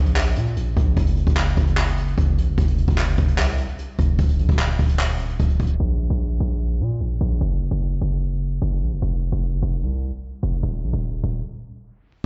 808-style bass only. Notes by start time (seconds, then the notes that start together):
Already playing: A#1
0.36 A#2
0.56 A#1
0.77 A#1
0.97 F#1
1.27 F#1
1.57 F#1
2.18 F#1
2.38 A#1
2.48 F#1
2.58 F1
2.88 F1
3.08 F#1
3.18 F1
3.38 C2
3.99 F1
4.19 D#1
4.39 A#1
4.49 D#1
4.79 D#1
5.40 D#1
5.60 D#1
5.80 A#1
6.10 A#1
6.40 A#1
6.80 A#2
7.01 A#1
7.21 A#1
7.41 F#1
7.71 F#1
8.01 F#1
8.62 F#1
8.82 A#1
8.92 F#1
9.02 F1
9.32 F1
9.52 F#1
9.62 F1
9.82 C2
10.43 F1
10.63 D#1
10.83 A#1
10.93 D#1
11.23 D#1